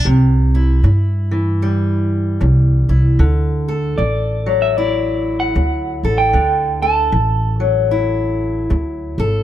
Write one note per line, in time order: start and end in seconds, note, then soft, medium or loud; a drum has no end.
0.05 0.80 C2 medium
0.05 0.83 C3 medium
0.55 2.89 E4 soft
0.83 2.37 G2 medium
0.83 muted steel-string acoustic guitar stroke medium
1.31 3.22 E3 soft
1.62 3.20 G3 soft
2.41 2.87 C2 medium
2.41 muted steel-string acoustic guitar stroke soft
2.89 3.18 C2 medium
2.89 3.22 E4 soft
3.19 3.94 D2 medium
3.19 3.98 D3 medium
3.68 6.04 A4 soft
3.98 5.52 A1 medium
3.98 4.62 D5 medium
3.98 muted steel-string acoustic guitar stroke medium
4.46 6.30 F#3 medium
4.62 4.77 E5 medium
4.77 6.31 E4 soft
4.77 5.39 D5 medium
5.40 6.18 F#5 medium
5.55 6.01 D2 medium
5.55 muted steel-string acoustic guitar stroke medium
6.03 6.33 A1 medium
6.03 6.82 A4 soft
6.18 6.82 G5 medium
6.33 7.09 D2 medium
6.33 7.11 D3 medium
6.82 9.19 A4 medium
6.82 9.14 A5 medium
7.12 8.66 A1 medium
7.12 muted steel-string acoustic guitar stroke medium
7.60 9.43 F#3 soft
7.91 9.43 E4 soft
8.70 9.16 D2 medium
8.70 muted steel-string acoustic guitar stroke medium
9.18 9.43 G#1 medium
9.18 9.43 A4 medium